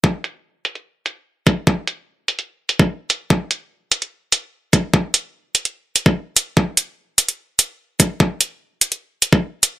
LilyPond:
\new DrumStaff \with { instrumentName = "Drums" } \drummode { \time 4/4 \tempo 4 = 147 bd8 hh8 r8 hh16 hh16 r8 hh8 r8 <hh bd>8 | bd8 hh8 r8 hh16 hh16 r8 hh16 bd16 r8 hh8 | bd8 hh8 r8 hh16 hh16 r8 hh8 r8 <hh bd>8 | bd8 hh8 r8 hh16 hh16 r8 hh16 bd16 r8 hh8 |
bd8 hh8 r8 hh16 hh16 r8 hh8 r8 <hh bd>8 | bd8 hh8 r8 hh16 hh16 r8 hh16 bd16 r8 hh8 | }